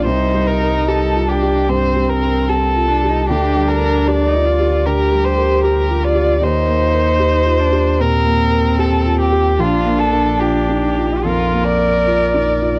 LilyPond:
<<
  \new Staff \with { instrumentName = "Violin" } { \time 4/4 \key bes \major \tempo 4 = 75 c''8 bes'8 a'8 g'8 c''8 bes'8 a'4 | g'8 bes'8 d''4 bes'8 c''8 bes'8 d''8 | c''2 bes'4 a'8 g'8 | f'8 a'8 g'4 f'8 d''4. | }
  \new Staff \with { instrumentName = "Felt piano" } { \time 4/4 \key bes \major \tuplet 3/2 { c,8 g8 bes'8 g'8 f'8 g'8 g,8 g8 bes'8 g'8 f'8 g'8 } | \tuplet 3/2 { d,8 g8 bes'8 g'8 f'8 g'8 d8 g8 bes'8 g'8 f'8 g'8 } | \tuplet 3/2 { ees,8 bes8 bes'8 g'8 f'8 g'8 bes,8 bes8 bes'8 g'8 f'8 g'8 } | \tuplet 3/2 { bes,,8 bes8 bes'8 f'8 ees'8 f'8 f,8 bes8 bes'8 f'8 ees'8 f'8 } | }
  \new Staff \with { instrumentName = "Cello" } { \time 4/4 \key bes \major ees'4. d'8 c'4. d'16 ees'16 | d'4~ d'16 ees'16 f'8 g'4. f'8 | ees'4. d'8 c'2 | d'2 bes'2 | }
  \new Staff \with { instrumentName = "Sub bass" } { \clef bass \time 4/4 \key bes \major c,1 | d,1 | ees,1 | bes,,1 | }
>>